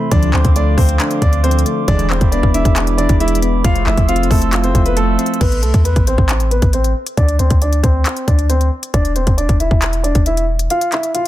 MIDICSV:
0, 0, Header, 1, 7, 480
1, 0, Start_track
1, 0, Key_signature, 0, "minor"
1, 0, Tempo, 441176
1, 125, Time_signature, 4, 2, 24, 8
1, 12269, End_track
2, 0, Start_track
2, 0, Title_t, "Glass harmonica"
2, 0, Program_c, 0, 92
2, 0, Note_on_c, 0, 69, 74
2, 0, Note_on_c, 0, 84, 67
2, 126, Note_on_c, 0, 77, 66
2, 126, Note_on_c, 0, 86, 82
2, 2002, Note_off_c, 0, 69, 0
2, 2002, Note_off_c, 0, 84, 0
2, 2027, Note_off_c, 0, 77, 0
2, 2045, Note_on_c, 0, 68, 73
2, 2045, Note_on_c, 0, 76, 67
2, 2045, Note_on_c, 0, 83, 69
2, 3927, Note_off_c, 0, 86, 0
2, 3946, Note_off_c, 0, 68, 0
2, 3946, Note_off_c, 0, 76, 0
2, 3946, Note_off_c, 0, 83, 0
2, 3966, Note_on_c, 0, 69, 75
2, 3966, Note_on_c, 0, 76, 67
2, 3966, Note_on_c, 0, 84, 68
2, 3966, Note_on_c, 0, 88, 81
2, 5867, Note_off_c, 0, 69, 0
2, 5867, Note_off_c, 0, 76, 0
2, 5867, Note_off_c, 0, 84, 0
2, 5867, Note_off_c, 0, 88, 0
2, 12269, End_track
3, 0, Start_track
3, 0, Title_t, "Grand piano"
3, 0, Program_c, 1, 0
3, 126, Note_on_c, 1, 74, 103
3, 135, Note_on_c, 1, 62, 85
3, 309, Note_off_c, 1, 74, 0
3, 314, Note_off_c, 1, 62, 0
3, 361, Note_on_c, 1, 72, 85
3, 370, Note_on_c, 1, 60, 67
3, 546, Note_off_c, 1, 72, 0
3, 551, Note_off_c, 1, 60, 0
3, 612, Note_on_c, 1, 74, 81
3, 620, Note_on_c, 1, 62, 66
3, 792, Note_off_c, 1, 74, 0
3, 797, Note_off_c, 1, 62, 0
3, 842, Note_on_c, 1, 72, 87
3, 850, Note_on_c, 1, 60, 71
3, 1295, Note_off_c, 1, 72, 0
3, 1299, Note_off_c, 1, 60, 0
3, 1328, Note_on_c, 1, 74, 85
3, 1337, Note_on_c, 1, 62, 67
3, 1510, Note_off_c, 1, 74, 0
3, 1515, Note_off_c, 1, 62, 0
3, 1562, Note_on_c, 1, 72, 88
3, 1571, Note_on_c, 1, 60, 67
3, 1746, Note_off_c, 1, 72, 0
3, 1752, Note_off_c, 1, 60, 0
3, 2046, Note_on_c, 1, 74, 115
3, 2054, Note_on_c, 1, 62, 91
3, 2229, Note_off_c, 1, 74, 0
3, 2234, Note_off_c, 1, 62, 0
3, 2282, Note_on_c, 1, 72, 83
3, 2291, Note_on_c, 1, 60, 60
3, 2466, Note_off_c, 1, 72, 0
3, 2472, Note_off_c, 1, 60, 0
3, 2520, Note_on_c, 1, 74, 85
3, 2529, Note_on_c, 1, 62, 70
3, 2705, Note_off_c, 1, 74, 0
3, 2711, Note_off_c, 1, 62, 0
3, 2766, Note_on_c, 1, 76, 78
3, 2775, Note_on_c, 1, 64, 57
3, 3217, Note_off_c, 1, 76, 0
3, 3222, Note_off_c, 1, 64, 0
3, 3239, Note_on_c, 1, 74, 83
3, 3248, Note_on_c, 1, 62, 59
3, 3424, Note_off_c, 1, 74, 0
3, 3430, Note_off_c, 1, 62, 0
3, 3487, Note_on_c, 1, 76, 80
3, 3496, Note_on_c, 1, 64, 70
3, 3670, Note_off_c, 1, 76, 0
3, 3675, Note_off_c, 1, 64, 0
3, 3969, Note_on_c, 1, 77, 108
3, 3978, Note_on_c, 1, 65, 75
3, 4151, Note_off_c, 1, 77, 0
3, 4156, Note_off_c, 1, 65, 0
3, 4206, Note_on_c, 1, 76, 84
3, 4215, Note_on_c, 1, 64, 64
3, 4389, Note_off_c, 1, 76, 0
3, 4394, Note_off_c, 1, 64, 0
3, 4445, Note_on_c, 1, 77, 88
3, 4454, Note_on_c, 1, 65, 75
3, 4628, Note_off_c, 1, 77, 0
3, 4633, Note_off_c, 1, 65, 0
3, 4694, Note_on_c, 1, 69, 83
3, 4703, Note_on_c, 1, 57, 64
3, 5029, Note_off_c, 1, 69, 0
3, 5033, Note_off_c, 1, 57, 0
3, 5048, Note_on_c, 1, 72, 82
3, 5056, Note_on_c, 1, 60, 59
3, 5230, Note_off_c, 1, 72, 0
3, 5235, Note_off_c, 1, 60, 0
3, 5285, Note_on_c, 1, 71, 75
3, 5294, Note_on_c, 1, 59, 58
3, 5377, Note_off_c, 1, 71, 0
3, 5382, Note_off_c, 1, 59, 0
3, 5406, Note_on_c, 1, 69, 81
3, 5415, Note_on_c, 1, 57, 67
3, 5857, Note_off_c, 1, 69, 0
3, 5862, Note_off_c, 1, 57, 0
3, 5883, Note_on_c, 1, 71, 95
3, 5892, Note_on_c, 1, 59, 77
3, 6067, Note_off_c, 1, 71, 0
3, 6072, Note_off_c, 1, 59, 0
3, 6118, Note_on_c, 1, 69, 74
3, 6127, Note_on_c, 1, 57, 62
3, 6304, Note_off_c, 1, 69, 0
3, 6309, Note_off_c, 1, 57, 0
3, 6361, Note_on_c, 1, 71, 87
3, 6370, Note_on_c, 1, 59, 64
3, 6546, Note_off_c, 1, 71, 0
3, 6551, Note_off_c, 1, 59, 0
3, 6607, Note_on_c, 1, 72, 85
3, 6616, Note_on_c, 1, 60, 58
3, 7058, Note_off_c, 1, 72, 0
3, 7062, Note_off_c, 1, 60, 0
3, 7082, Note_on_c, 1, 71, 79
3, 7091, Note_on_c, 1, 59, 57
3, 7266, Note_off_c, 1, 71, 0
3, 7271, Note_off_c, 1, 59, 0
3, 7329, Note_on_c, 1, 72, 75
3, 7338, Note_on_c, 1, 60, 60
3, 7510, Note_off_c, 1, 72, 0
3, 7516, Note_off_c, 1, 60, 0
3, 7805, Note_on_c, 1, 74, 101
3, 7813, Note_on_c, 1, 62, 80
3, 7988, Note_off_c, 1, 74, 0
3, 7993, Note_off_c, 1, 62, 0
3, 8040, Note_on_c, 1, 72, 79
3, 8049, Note_on_c, 1, 60, 64
3, 8225, Note_off_c, 1, 72, 0
3, 8230, Note_off_c, 1, 60, 0
3, 8291, Note_on_c, 1, 74, 81
3, 8299, Note_on_c, 1, 62, 64
3, 8472, Note_off_c, 1, 74, 0
3, 8477, Note_off_c, 1, 62, 0
3, 8522, Note_on_c, 1, 72, 83
3, 8530, Note_on_c, 1, 60, 74
3, 8975, Note_off_c, 1, 72, 0
3, 8979, Note_off_c, 1, 60, 0
3, 9007, Note_on_c, 1, 74, 81
3, 9016, Note_on_c, 1, 62, 67
3, 9189, Note_off_c, 1, 74, 0
3, 9195, Note_off_c, 1, 62, 0
3, 9241, Note_on_c, 1, 72, 84
3, 9250, Note_on_c, 1, 60, 64
3, 9426, Note_off_c, 1, 72, 0
3, 9431, Note_off_c, 1, 60, 0
3, 9726, Note_on_c, 1, 74, 114
3, 9735, Note_on_c, 1, 62, 85
3, 9909, Note_off_c, 1, 74, 0
3, 9914, Note_off_c, 1, 62, 0
3, 9963, Note_on_c, 1, 72, 79
3, 9971, Note_on_c, 1, 60, 61
3, 10146, Note_off_c, 1, 72, 0
3, 10152, Note_off_c, 1, 60, 0
3, 10201, Note_on_c, 1, 74, 86
3, 10210, Note_on_c, 1, 62, 67
3, 10386, Note_off_c, 1, 74, 0
3, 10391, Note_off_c, 1, 62, 0
3, 10446, Note_on_c, 1, 76, 77
3, 10455, Note_on_c, 1, 64, 57
3, 10897, Note_off_c, 1, 76, 0
3, 10902, Note_off_c, 1, 64, 0
3, 10919, Note_on_c, 1, 74, 78
3, 10928, Note_on_c, 1, 62, 61
3, 11104, Note_off_c, 1, 74, 0
3, 11110, Note_off_c, 1, 62, 0
3, 11167, Note_on_c, 1, 76, 74
3, 11176, Note_on_c, 1, 64, 64
3, 11349, Note_off_c, 1, 76, 0
3, 11355, Note_off_c, 1, 64, 0
3, 11649, Note_on_c, 1, 77, 102
3, 11658, Note_on_c, 1, 65, 72
3, 11831, Note_off_c, 1, 77, 0
3, 11836, Note_off_c, 1, 65, 0
3, 11886, Note_on_c, 1, 76, 81
3, 11895, Note_on_c, 1, 64, 60
3, 12069, Note_off_c, 1, 76, 0
3, 12074, Note_off_c, 1, 64, 0
3, 12125, Note_on_c, 1, 77, 88
3, 12134, Note_on_c, 1, 65, 72
3, 12269, Note_off_c, 1, 65, 0
3, 12269, Note_off_c, 1, 77, 0
3, 12269, End_track
4, 0, Start_track
4, 0, Title_t, "Synth keys"
4, 0, Program_c, 2, 88
4, 0, Control_c, 2, 64, 127
4, 0, Note_on_c, 2, 48, 78
4, 0, Note_on_c, 2, 52, 81
4, 0, Note_on_c, 2, 57, 83
4, 0, Note_on_c, 2, 60, 100
4, 125, Note_off_c, 2, 57, 0
4, 125, Note_on_c, 2, 50, 94
4, 126, Note_off_c, 2, 48, 0
4, 126, Note_off_c, 2, 60, 0
4, 127, Note_off_c, 2, 52, 0
4, 141, Control_c, 2, 64, 0
4, 357, Control_c, 2, 64, 127
4, 367, Note_on_c, 2, 53, 80
4, 607, Note_on_c, 2, 57, 92
4, 845, Note_on_c, 2, 60, 83
4, 1090, Note_on_c, 2, 62, 103
4, 1311, Note_off_c, 2, 50, 0
4, 1324, Note_on_c, 2, 50, 84
4, 1553, Note_off_c, 2, 53, 0
4, 1566, Note_on_c, 2, 53, 82
4, 1790, Note_off_c, 2, 57, 0
4, 1803, Note_on_c, 2, 57, 81
4, 2044, Note_off_c, 2, 57, 0
4, 2045, Note_off_c, 2, 50, 0
4, 2045, Note_off_c, 2, 60, 0
4, 2046, Note_off_c, 2, 53, 0
4, 2048, Note_off_c, 2, 62, 0
4, 2048, Note_on_c, 2, 52, 92
4, 2057, Control_c, 2, 64, 0
4, 2218, Control_c, 2, 64, 127
4, 2285, Note_on_c, 2, 56, 79
4, 2530, Note_on_c, 2, 59, 94
4, 2770, Note_on_c, 2, 62, 90
4, 3004, Note_on_c, 2, 64, 105
4, 3235, Note_off_c, 2, 52, 0
4, 3248, Note_on_c, 2, 52, 84
4, 3469, Note_off_c, 2, 56, 0
4, 3482, Note_on_c, 2, 56, 89
4, 3710, Note_off_c, 2, 59, 0
4, 3723, Note_on_c, 2, 59, 87
4, 3964, Note_off_c, 2, 56, 0
4, 3964, Note_off_c, 2, 59, 0
4, 3965, Note_off_c, 2, 64, 0
4, 3967, Note_off_c, 2, 52, 0
4, 3968, Note_off_c, 2, 62, 0
4, 3969, Note_on_c, 2, 53, 90
4, 3980, Control_c, 2, 64, 0
4, 4200, Control_c, 2, 64, 127
4, 4210, Note_on_c, 2, 57, 85
4, 4438, Note_on_c, 2, 60, 96
4, 4683, Note_on_c, 2, 64, 76
4, 4925, Note_on_c, 2, 65, 113
4, 5150, Note_off_c, 2, 53, 0
4, 5164, Note_on_c, 2, 53, 81
4, 5389, Note_off_c, 2, 57, 0
4, 5402, Note_on_c, 2, 57, 92
4, 5627, Note_off_c, 2, 60, 0
4, 5641, Note_on_c, 2, 60, 81
4, 5883, Note_off_c, 2, 60, 0
4, 5884, Note_off_c, 2, 57, 0
4, 5884, Note_off_c, 2, 64, 0
4, 5885, Note_off_c, 2, 53, 0
4, 5885, Note_off_c, 2, 65, 0
4, 5898, Control_c, 2, 64, 0
4, 6107, Control_c, 2, 64, 127
4, 7819, Control_c, 2, 64, 0
4, 12269, End_track
5, 0, Start_track
5, 0, Title_t, "Analog polysynth"
5, 0, Program_c, 3, 90
5, 125, Note_on_c, 3, 50, 100
5, 126, Note_on_c, 3, 48, 103
5, 126, Note_on_c, 3, 53, 104
5, 329, Note_off_c, 3, 50, 0
5, 330, Note_off_c, 3, 48, 0
5, 330, Note_off_c, 3, 53, 0
5, 2046, Note_on_c, 3, 50, 104
5, 2046, Note_on_c, 3, 52, 97
5, 2046, Note_on_c, 3, 56, 109
5, 2250, Note_off_c, 3, 50, 0
5, 2250, Note_off_c, 3, 52, 0
5, 2250, Note_off_c, 3, 56, 0
5, 3966, Note_on_c, 3, 45, 97
5, 3966, Note_on_c, 3, 53, 95
5, 3966, Note_on_c, 3, 57, 105
5, 4170, Note_off_c, 3, 45, 0
5, 4170, Note_off_c, 3, 53, 0
5, 4170, Note_off_c, 3, 57, 0
5, 12269, End_track
6, 0, Start_track
6, 0, Title_t, "808-style bass"
6, 0, Program_c, 4, 38
6, 125, Note_on_c, 4, 38, 113
6, 356, Note_off_c, 4, 38, 0
6, 365, Note_on_c, 4, 38, 101
6, 481, Note_off_c, 4, 38, 0
6, 486, Note_on_c, 4, 38, 106
6, 831, Note_off_c, 4, 38, 0
6, 845, Note_on_c, 4, 38, 107
6, 1076, Note_off_c, 4, 38, 0
6, 1326, Note_on_c, 4, 38, 110
6, 1786, Note_off_c, 4, 38, 0
6, 2046, Note_on_c, 4, 28, 111
6, 2391, Note_off_c, 4, 28, 0
6, 2406, Note_on_c, 4, 28, 104
6, 2636, Note_off_c, 4, 28, 0
6, 2646, Note_on_c, 4, 28, 102
6, 2876, Note_off_c, 4, 28, 0
6, 2885, Note_on_c, 4, 28, 100
6, 3346, Note_off_c, 4, 28, 0
6, 3366, Note_on_c, 4, 28, 100
6, 3942, Note_off_c, 4, 28, 0
6, 3966, Note_on_c, 4, 29, 111
6, 4196, Note_off_c, 4, 29, 0
6, 4206, Note_on_c, 4, 29, 100
6, 4321, Note_off_c, 4, 29, 0
6, 4325, Note_on_c, 4, 29, 105
6, 4671, Note_off_c, 4, 29, 0
6, 4685, Note_on_c, 4, 29, 102
6, 5146, Note_off_c, 4, 29, 0
6, 5166, Note_on_c, 4, 29, 107
6, 5626, Note_off_c, 4, 29, 0
6, 5885, Note_on_c, 4, 33, 103
6, 6125, Note_on_c, 4, 36, 98
6, 6142, Note_off_c, 4, 33, 0
6, 6239, Note_off_c, 4, 36, 0
6, 6245, Note_on_c, 4, 40, 99
6, 6476, Note_off_c, 4, 40, 0
6, 6486, Note_on_c, 4, 33, 100
6, 6716, Note_off_c, 4, 33, 0
6, 6725, Note_on_c, 4, 33, 101
6, 7186, Note_off_c, 4, 33, 0
6, 7206, Note_on_c, 4, 33, 101
6, 7551, Note_off_c, 4, 33, 0
6, 7806, Note_on_c, 4, 38, 107
6, 8036, Note_off_c, 4, 38, 0
6, 8046, Note_on_c, 4, 38, 96
6, 8161, Note_off_c, 4, 38, 0
6, 8166, Note_on_c, 4, 38, 104
6, 8511, Note_off_c, 4, 38, 0
6, 8525, Note_on_c, 4, 38, 101
6, 8756, Note_off_c, 4, 38, 0
6, 9006, Note_on_c, 4, 38, 106
6, 9466, Note_off_c, 4, 38, 0
6, 9726, Note_on_c, 4, 28, 106
6, 10071, Note_off_c, 4, 28, 0
6, 10085, Note_on_c, 4, 28, 105
6, 10316, Note_off_c, 4, 28, 0
6, 10326, Note_on_c, 4, 28, 104
6, 10556, Note_off_c, 4, 28, 0
6, 10565, Note_on_c, 4, 28, 99
6, 11026, Note_off_c, 4, 28, 0
6, 11045, Note_on_c, 4, 28, 97
6, 11621, Note_off_c, 4, 28, 0
6, 12269, End_track
7, 0, Start_track
7, 0, Title_t, "Drums"
7, 125, Note_on_c, 9, 36, 117
7, 125, Note_on_c, 9, 42, 102
7, 234, Note_off_c, 9, 36, 0
7, 234, Note_off_c, 9, 42, 0
7, 245, Note_on_c, 9, 42, 66
7, 354, Note_off_c, 9, 42, 0
7, 365, Note_on_c, 9, 39, 96
7, 474, Note_off_c, 9, 39, 0
7, 484, Note_on_c, 9, 42, 60
7, 486, Note_on_c, 9, 36, 93
7, 593, Note_off_c, 9, 42, 0
7, 594, Note_off_c, 9, 36, 0
7, 607, Note_on_c, 9, 42, 81
7, 716, Note_off_c, 9, 42, 0
7, 845, Note_on_c, 9, 36, 99
7, 847, Note_on_c, 9, 46, 98
7, 954, Note_off_c, 9, 36, 0
7, 955, Note_off_c, 9, 46, 0
7, 965, Note_on_c, 9, 42, 68
7, 1074, Note_off_c, 9, 42, 0
7, 1086, Note_on_c, 9, 39, 117
7, 1086, Note_on_c, 9, 42, 93
7, 1194, Note_off_c, 9, 42, 0
7, 1195, Note_off_c, 9, 39, 0
7, 1204, Note_on_c, 9, 42, 63
7, 1312, Note_off_c, 9, 42, 0
7, 1326, Note_on_c, 9, 36, 98
7, 1326, Note_on_c, 9, 42, 81
7, 1435, Note_off_c, 9, 36, 0
7, 1435, Note_off_c, 9, 42, 0
7, 1444, Note_on_c, 9, 42, 58
7, 1553, Note_off_c, 9, 42, 0
7, 1566, Note_on_c, 9, 42, 65
7, 1646, Note_off_c, 9, 42, 0
7, 1646, Note_on_c, 9, 42, 67
7, 1726, Note_off_c, 9, 42, 0
7, 1726, Note_on_c, 9, 42, 65
7, 1806, Note_off_c, 9, 42, 0
7, 1806, Note_on_c, 9, 42, 71
7, 1915, Note_off_c, 9, 42, 0
7, 2046, Note_on_c, 9, 36, 115
7, 2046, Note_on_c, 9, 42, 101
7, 2154, Note_off_c, 9, 42, 0
7, 2155, Note_off_c, 9, 36, 0
7, 2166, Note_on_c, 9, 42, 68
7, 2274, Note_off_c, 9, 42, 0
7, 2285, Note_on_c, 9, 39, 98
7, 2394, Note_off_c, 9, 39, 0
7, 2405, Note_on_c, 9, 42, 59
7, 2406, Note_on_c, 9, 36, 99
7, 2513, Note_off_c, 9, 42, 0
7, 2515, Note_off_c, 9, 36, 0
7, 2527, Note_on_c, 9, 42, 78
7, 2636, Note_off_c, 9, 42, 0
7, 2646, Note_on_c, 9, 36, 94
7, 2755, Note_off_c, 9, 36, 0
7, 2767, Note_on_c, 9, 42, 99
7, 2876, Note_off_c, 9, 42, 0
7, 2885, Note_on_c, 9, 36, 94
7, 2886, Note_on_c, 9, 42, 69
7, 2994, Note_off_c, 9, 36, 0
7, 2995, Note_off_c, 9, 42, 0
7, 3006, Note_on_c, 9, 39, 115
7, 3006, Note_on_c, 9, 42, 92
7, 3115, Note_off_c, 9, 39, 0
7, 3115, Note_off_c, 9, 42, 0
7, 3124, Note_on_c, 9, 42, 65
7, 3233, Note_off_c, 9, 42, 0
7, 3247, Note_on_c, 9, 42, 83
7, 3356, Note_off_c, 9, 42, 0
7, 3364, Note_on_c, 9, 42, 60
7, 3366, Note_on_c, 9, 36, 99
7, 3473, Note_off_c, 9, 42, 0
7, 3475, Note_off_c, 9, 36, 0
7, 3486, Note_on_c, 9, 42, 67
7, 3566, Note_off_c, 9, 42, 0
7, 3566, Note_on_c, 9, 42, 67
7, 3646, Note_off_c, 9, 42, 0
7, 3646, Note_on_c, 9, 42, 62
7, 3726, Note_off_c, 9, 42, 0
7, 3726, Note_on_c, 9, 42, 68
7, 3835, Note_off_c, 9, 42, 0
7, 3966, Note_on_c, 9, 36, 115
7, 3966, Note_on_c, 9, 42, 104
7, 4074, Note_off_c, 9, 36, 0
7, 4074, Note_off_c, 9, 42, 0
7, 4086, Note_on_c, 9, 42, 67
7, 4194, Note_off_c, 9, 42, 0
7, 4205, Note_on_c, 9, 39, 95
7, 4314, Note_off_c, 9, 39, 0
7, 4324, Note_on_c, 9, 42, 59
7, 4326, Note_on_c, 9, 36, 91
7, 4433, Note_off_c, 9, 42, 0
7, 4434, Note_off_c, 9, 36, 0
7, 4445, Note_on_c, 9, 42, 83
7, 4525, Note_off_c, 9, 42, 0
7, 4525, Note_on_c, 9, 42, 64
7, 4606, Note_off_c, 9, 42, 0
7, 4606, Note_on_c, 9, 42, 48
7, 4685, Note_on_c, 9, 36, 100
7, 4687, Note_on_c, 9, 46, 101
7, 4714, Note_off_c, 9, 42, 0
7, 4794, Note_off_c, 9, 36, 0
7, 4795, Note_off_c, 9, 46, 0
7, 4805, Note_on_c, 9, 42, 68
7, 4914, Note_off_c, 9, 42, 0
7, 4925, Note_on_c, 9, 42, 90
7, 4926, Note_on_c, 9, 39, 114
7, 5034, Note_off_c, 9, 42, 0
7, 5035, Note_off_c, 9, 39, 0
7, 5044, Note_on_c, 9, 42, 63
7, 5152, Note_off_c, 9, 42, 0
7, 5166, Note_on_c, 9, 36, 94
7, 5167, Note_on_c, 9, 42, 80
7, 5275, Note_off_c, 9, 36, 0
7, 5276, Note_off_c, 9, 42, 0
7, 5284, Note_on_c, 9, 42, 60
7, 5393, Note_off_c, 9, 42, 0
7, 5403, Note_on_c, 9, 42, 77
7, 5512, Note_off_c, 9, 42, 0
7, 5645, Note_on_c, 9, 42, 69
7, 5725, Note_off_c, 9, 42, 0
7, 5725, Note_on_c, 9, 42, 56
7, 5805, Note_off_c, 9, 42, 0
7, 5805, Note_on_c, 9, 42, 44
7, 5886, Note_off_c, 9, 42, 0
7, 5886, Note_on_c, 9, 36, 108
7, 5886, Note_on_c, 9, 42, 96
7, 5886, Note_on_c, 9, 49, 92
7, 5994, Note_off_c, 9, 36, 0
7, 5994, Note_off_c, 9, 42, 0
7, 5994, Note_off_c, 9, 49, 0
7, 6005, Note_on_c, 9, 42, 63
7, 6114, Note_off_c, 9, 42, 0
7, 6123, Note_on_c, 9, 42, 73
7, 6232, Note_off_c, 9, 42, 0
7, 6244, Note_on_c, 9, 42, 57
7, 6245, Note_on_c, 9, 36, 94
7, 6353, Note_off_c, 9, 42, 0
7, 6354, Note_off_c, 9, 36, 0
7, 6367, Note_on_c, 9, 42, 87
7, 6475, Note_off_c, 9, 42, 0
7, 6485, Note_on_c, 9, 42, 53
7, 6486, Note_on_c, 9, 36, 89
7, 6594, Note_off_c, 9, 42, 0
7, 6595, Note_off_c, 9, 36, 0
7, 6606, Note_on_c, 9, 42, 86
7, 6715, Note_off_c, 9, 42, 0
7, 6725, Note_on_c, 9, 36, 92
7, 6834, Note_off_c, 9, 36, 0
7, 6845, Note_on_c, 9, 42, 89
7, 6846, Note_on_c, 9, 39, 114
7, 6954, Note_off_c, 9, 42, 0
7, 6955, Note_off_c, 9, 39, 0
7, 6964, Note_on_c, 9, 42, 61
7, 7072, Note_off_c, 9, 42, 0
7, 7087, Note_on_c, 9, 42, 75
7, 7195, Note_off_c, 9, 42, 0
7, 7204, Note_on_c, 9, 42, 55
7, 7206, Note_on_c, 9, 36, 95
7, 7313, Note_off_c, 9, 42, 0
7, 7315, Note_off_c, 9, 36, 0
7, 7324, Note_on_c, 9, 42, 79
7, 7432, Note_off_c, 9, 42, 0
7, 7446, Note_on_c, 9, 42, 55
7, 7555, Note_off_c, 9, 42, 0
7, 7687, Note_on_c, 9, 42, 78
7, 7795, Note_off_c, 9, 42, 0
7, 7806, Note_on_c, 9, 36, 110
7, 7806, Note_on_c, 9, 42, 94
7, 7915, Note_off_c, 9, 36, 0
7, 7915, Note_off_c, 9, 42, 0
7, 7926, Note_on_c, 9, 42, 64
7, 8035, Note_off_c, 9, 42, 0
7, 8043, Note_on_c, 9, 42, 75
7, 8152, Note_off_c, 9, 42, 0
7, 8164, Note_on_c, 9, 42, 58
7, 8166, Note_on_c, 9, 36, 91
7, 8273, Note_off_c, 9, 42, 0
7, 8274, Note_off_c, 9, 36, 0
7, 8287, Note_on_c, 9, 42, 85
7, 8395, Note_off_c, 9, 42, 0
7, 8406, Note_on_c, 9, 42, 54
7, 8514, Note_off_c, 9, 42, 0
7, 8525, Note_on_c, 9, 36, 96
7, 8527, Note_on_c, 9, 42, 88
7, 8634, Note_off_c, 9, 36, 0
7, 8635, Note_off_c, 9, 42, 0
7, 8765, Note_on_c, 9, 42, 94
7, 8766, Note_on_c, 9, 39, 112
7, 8874, Note_off_c, 9, 42, 0
7, 8875, Note_off_c, 9, 39, 0
7, 8884, Note_on_c, 9, 42, 63
7, 8992, Note_off_c, 9, 42, 0
7, 9006, Note_on_c, 9, 36, 91
7, 9006, Note_on_c, 9, 42, 78
7, 9115, Note_off_c, 9, 36, 0
7, 9115, Note_off_c, 9, 42, 0
7, 9124, Note_on_c, 9, 42, 57
7, 9233, Note_off_c, 9, 42, 0
7, 9244, Note_on_c, 9, 42, 82
7, 9352, Note_off_c, 9, 42, 0
7, 9366, Note_on_c, 9, 42, 52
7, 9475, Note_off_c, 9, 42, 0
7, 9606, Note_on_c, 9, 42, 79
7, 9715, Note_off_c, 9, 42, 0
7, 9726, Note_on_c, 9, 36, 115
7, 9726, Note_on_c, 9, 42, 100
7, 9834, Note_off_c, 9, 36, 0
7, 9834, Note_off_c, 9, 42, 0
7, 9845, Note_on_c, 9, 42, 65
7, 9954, Note_off_c, 9, 42, 0
7, 9963, Note_on_c, 9, 42, 75
7, 10072, Note_off_c, 9, 42, 0
7, 10084, Note_on_c, 9, 42, 58
7, 10085, Note_on_c, 9, 36, 90
7, 10193, Note_off_c, 9, 42, 0
7, 10194, Note_off_c, 9, 36, 0
7, 10206, Note_on_c, 9, 42, 84
7, 10315, Note_off_c, 9, 42, 0
7, 10325, Note_on_c, 9, 42, 51
7, 10326, Note_on_c, 9, 36, 92
7, 10434, Note_off_c, 9, 42, 0
7, 10435, Note_off_c, 9, 36, 0
7, 10446, Note_on_c, 9, 42, 89
7, 10555, Note_off_c, 9, 42, 0
7, 10565, Note_on_c, 9, 36, 93
7, 10674, Note_off_c, 9, 36, 0
7, 10685, Note_on_c, 9, 42, 92
7, 10686, Note_on_c, 9, 39, 114
7, 10794, Note_off_c, 9, 39, 0
7, 10794, Note_off_c, 9, 42, 0
7, 10803, Note_on_c, 9, 42, 62
7, 10912, Note_off_c, 9, 42, 0
7, 10926, Note_on_c, 9, 42, 76
7, 11035, Note_off_c, 9, 42, 0
7, 11043, Note_on_c, 9, 42, 58
7, 11045, Note_on_c, 9, 36, 95
7, 11152, Note_off_c, 9, 42, 0
7, 11154, Note_off_c, 9, 36, 0
7, 11163, Note_on_c, 9, 42, 81
7, 11272, Note_off_c, 9, 42, 0
7, 11285, Note_on_c, 9, 42, 54
7, 11394, Note_off_c, 9, 42, 0
7, 11526, Note_on_c, 9, 42, 77
7, 11635, Note_off_c, 9, 42, 0
7, 11645, Note_on_c, 9, 42, 100
7, 11754, Note_off_c, 9, 42, 0
7, 11765, Note_on_c, 9, 42, 64
7, 11874, Note_off_c, 9, 42, 0
7, 11883, Note_on_c, 9, 42, 72
7, 11885, Note_on_c, 9, 39, 91
7, 11992, Note_off_c, 9, 42, 0
7, 11994, Note_off_c, 9, 39, 0
7, 12004, Note_on_c, 9, 42, 57
7, 12113, Note_off_c, 9, 42, 0
7, 12127, Note_on_c, 9, 42, 85
7, 12235, Note_off_c, 9, 42, 0
7, 12269, End_track
0, 0, End_of_file